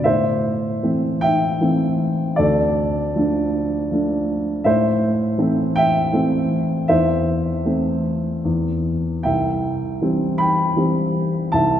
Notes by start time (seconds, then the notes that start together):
0.04 A2 C5 E5
0.83 E3 A3 C4
1.21 E5 G5
1.61 E3 A3 C4
2.36 D2 A4 D5
3.16 F3 A3 D4
3.91 F3 A3 D4
4.64 A2 C5 E5
5.38 E3 A3 C4
5.76 E5 G5
6.13 E3 A3 C4
6.88 E2 C5 E5
7.65 E3 A3 C4
8.45 E2
9.23 C2 E5 G5
10.02 E3 G3 C4
10.38 G5 B5
10.76 E3 G3 C4
11.52 C2 E5 A5